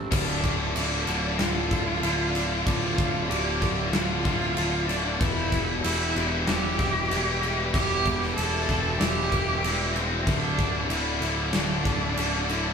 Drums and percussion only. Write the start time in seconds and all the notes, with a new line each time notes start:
0.12 kick, crash
0.44 kick, crash
0.76 crash
1.07 crash
1.39 snare, crash
1.71 kick, crash
2.03 crash
2.35 crash
2.67 kick, crash
2.98 kick, crash
3.31 crash
3.62 kick, crash
3.93 snare, crash
4.25 kick, crash
4.57 crash
4.89 crash
5.21 kick, crash
5.52 kick, crash
5.84 crash
6.16 crash
6.47 snare, crash
6.79 kick, crash
7.11 crash
7.43 crash
7.74 kick, crash
8.06 kick, crash
8.22 snare
8.38 crash
8.69 kick, crash
9.01 snare, crash
9.32 kick, crash
9.64 crash
9.96 crash
10.27 kick, crash
10.59 kick, crash
10.90 crash
11.22 crash
11.53 snare, crash
11.85 kick, crash
12.17 crash
12.49 crash